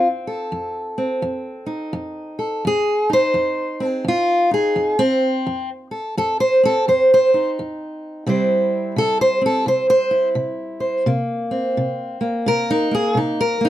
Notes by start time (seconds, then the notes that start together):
Already playing: F2 C4
0.27 A4
0.52 F2
0.98 C4
1.22 F2
1.66 D#4
1.93 F2
2.39 A4
2.65 F2 G#4
3.10 D#4 C5
3.34 F2
3.80 C4
3.85 G#4
4.04 F2 F4
4.51 D#4 G#4
4.76 F2
4.99 C4
5.46 F2
5.91 A4
6.17 F2 A4
6.40 C5
6.63 C4 A4
6.88 F2 C5
7.14 C5
7.34 D#4
7.59 F2
8.27 C3 G3 C4 E4 C5
8.96 C3 A4
9.21 C5
9.41 C4
9.46 A4
9.66 C3 C5
9.90 C5
10.11 E4
10.35 C3
10.80 C5
11.06 C3 A#3
11.51 C4
11.77 C3
12.21 A#3
12.46 C3 A#4
12.71 D#4
12.91 A#3 G#4
13.15 C3 D#4
13.41 A#4
13.61 A#3
13.65 D#4